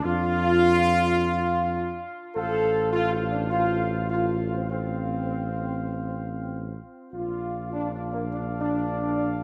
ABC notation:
X:1
M:4/4
L:1/16
Q:1/4=103
K:Fmix
V:1 name="Trumpet section"
F12- F2 z2 | [cf]4 [cf]4 [cf]4 [cf]4 | [cf]12- [cf]2 z2 | [df]16 |]
V:2 name="French horn section"
F12- F2 z2 | A4 (3F2 F2 D2 F4 F3 C | C12- C2 z2 | F4 (3D2 D2 B,2 D2 D6 |]
V:3 name="Trombone section"
F12- F2 z2 | A4 (3F2 F2 D2 F4 F3 C | C12- C2 z2 | F4 (3D2 D2 B,2 D2 D6 |]
V:4 name="Tuba" clef=bass
F,,12- F,,2 z2 | A,,,16- | A,,,12- A,,,2 z2 | B,,,16 |]